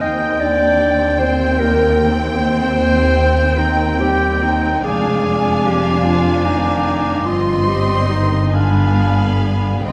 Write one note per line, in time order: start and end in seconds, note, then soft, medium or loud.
0.01 4.85 D#2 medium
0.01 4.82 C4 medium
0.01 0.40 D#4 medium
0.01 0.42 D#5 medium
0.01 4.81 G5 medium
0.01 1.18 G5 medium
0.01 4.85 G5 medium
0.40 1.20 D4 medium
0.40 1.20 D5 medium
1.18 1.59 C4 medium
1.18 1.61 C5 medium
1.18 2.09 G5 medium
1.18 2.35 G5 medium
1.59 2.38 A#3 medium
1.59 2.11 A#4 loud
2.36 3.40 C4 medium
2.36 3.60 C5 loud
2.36 3.54 G5 medium
2.36 3.57 G5 medium
3.57 3.99 D#3 medium
3.57 4.01 D#4 medium
3.57 4.82 G5 medium
3.57 4.83 G5 medium
4.00 4.43 G3 medium
4.00 4.44 G4 medium
4.42 4.85 D#3 medium
4.42 4.83 D#4 medium
4.84 7.28 F1 medium
4.84 7.27 F2 medium
4.84 5.67 G#3 medium
4.84 7.24 D4 medium
4.84 5.64 G#4 medium
4.84 6.04 D5 medium
4.84 7.23 F5 medium
4.84 7.24 G#5 medium
4.84 5.81 G#5 medium
5.65 6.07 G3 medium
5.65 6.05 G4 medium
6.04 6.46 F3 medium
6.04 6.46 F4 medium
6.04 7.25 D5 medium
6.04 7.25 G#5 medium
6.45 7.26 D#3 medium
6.45 7.27 D#4 medium
7.26 9.81 G1 medium
7.26 9.81 G2 medium
7.26 7.68 F3 medium
7.26 8.55 C4 medium
7.26 7.69 F4 medium
7.26 8.54 D#5 medium
7.26 8.56 D#5 medium
7.26 8.51 C6 medium
7.26 8.54 C6 medium
7.68 8.11 G3 medium
7.68 8.11 G4 medium
8.10 8.54 D#3 medium
8.10 8.54 D#4 medium
8.53 9.85 D3 medium
8.53 9.83 B3 medium
8.53 9.54 D4 medium
8.53 9.86 F5 medium
8.53 9.55 F5 medium
8.53 9.83 G#5 medium
8.53 9.86 B5 medium
9.84 9.92 C2 medium
9.84 9.92 C3 medium
9.84 9.92 C4 medium
9.84 9.92 D#5 medium
9.84 9.92 G5 medium
9.84 9.92 C6 medium